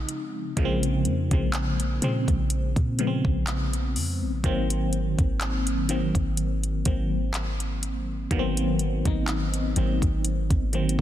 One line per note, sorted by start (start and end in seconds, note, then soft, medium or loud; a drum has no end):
0.00 0.57 C#3 medium
0.00 0.57 F3 medium
0.00 0.58 G#3 medium
0.00 0.65 C4 loud
0.00 0.50 D#4 medium
0.09 closed hi-hat medium
0.57 1.07 A#1 loud
0.57 1.27 C#3 loud
0.57 1.27 F3 loud
0.57 1.27 G#3 loud
0.57 0.65 A#3 loud
0.57 kick loud
0.57 closed hi-hat medium
0.65 1.31 C4 loud
0.83 closed hi-hat medium
1.05 1.30 F2 loud
1.05 closed hi-hat medium
1.31 1.99 A#1 loud
1.31 1.98 C#3 medium
1.31 1.98 F3 medium
1.31 1.99 G#3 medium
1.31 1.99 C4 medium
1.31 kick loud
1.31 closed hi-hat soft
1.53 clap loud
1.53 closed hi-hat medium
1.80 closed hi-hat medium
2.02 2.27 A#2 loud
2.02 2.94 C#3 medium
2.02 2.94 F3 medium
2.02 2.94 G#3 medium
2.02 2.94 C4 loud
2.02 closed hi-hat medium
2.28 2.74 A#1 loud
2.28 kick medium
2.28 closed hi-hat medium
2.50 closed hi-hat medium
2.76 3.23 A#2 loud
2.76 kick medium
2.76 closed hi-hat soft
2.99 4.36 C#3 medium
2.99 4.36 F3 medium
2.99 4.37 G#3 medium
2.99 3.07 B3 medium
2.99 closed hi-hat medium
3.07 4.40 C4 loud
3.25 3.97 A#1 loud
3.25 kick loud
3.47 clap loud
3.47 closed hi-hat medium
3.73 closed hi-hat medium
3.95 4.23 F2 loud
3.95 open hi-hat medium
4.22 4.43 A#1 loud
4.44 5.15 G#1 loud
4.44 5.81 D#3 loud
4.44 5.81 F#3 loud
4.44 5.82 A#3 loud
4.44 5.82 C4 loud
4.44 kick loud
4.44 closed hi-hat medium
4.70 closed hi-hat medium
4.93 closed hi-hat soft
5.18 6.11 G#1 loud
5.18 kick loud
5.18 closed hi-hat soft
5.41 clap loud
5.41 closed hi-hat medium
5.67 closed hi-hat medium
5.89 6.80 D#3 medium
5.89 6.81 F#3 medium
5.89 6.81 A#3 medium
5.89 6.81 C4 loud
5.89 closed hi-hat medium
6.15 6.83 G#1 loud
6.15 kick loud
6.15 closed hi-hat soft
6.37 closed hi-hat medium
6.63 closed hi-hat soft
6.85 8.27 G#1 medium
6.85 8.23 D#3 medium
6.85 8.23 F#3 medium
6.85 8.24 A#3 medium
6.85 8.24 C4 medium
6.85 kick loud
6.85 closed hi-hat medium
7.34 clap loud
7.34 closed hi-hat medium
7.60 closed hi-hat soft
7.83 closed hi-hat medium
8.31 9.02 G#1 loud
8.31 9.01 D#3 loud
8.31 9.01 F#3 loud
8.31 9.01 A#3 loud
8.31 8.39 B3 loud
8.31 kick loud
8.31 closed hi-hat medium
8.39 9.05 C4 loud
8.57 closed hi-hat medium
8.79 closed hi-hat medium
9.05 9.73 G#1 loud
9.05 9.72 D#3 medium
9.05 9.72 F#3 medium
9.05 9.73 A#3 medium
9.05 9.73 D#4 medium
9.05 kick loud
9.05 closed hi-hat soft
9.28 clap loud
9.28 closed hi-hat medium
9.54 closed hi-hat medium
9.76 10.01 G#1 loud
9.76 10.68 D#3 medium
9.76 10.68 F#3 medium
9.76 10.68 A#3 medium
9.76 10.69 C4 loud
9.76 closed hi-hat medium
10.02 10.49 G#1 loud
10.02 kick loud
10.02 closed hi-hat medium
10.25 closed hi-hat medium
10.50 10.97 G#1 loud
10.50 kick loud
10.50 closed hi-hat soft
10.73 11.01 D#3 medium
10.73 11.01 F#3 medium
10.73 11.01 A#3 medium
10.73 11.01 C4 loud
10.73 closed hi-hat soft
10.89 closed hi-hat medium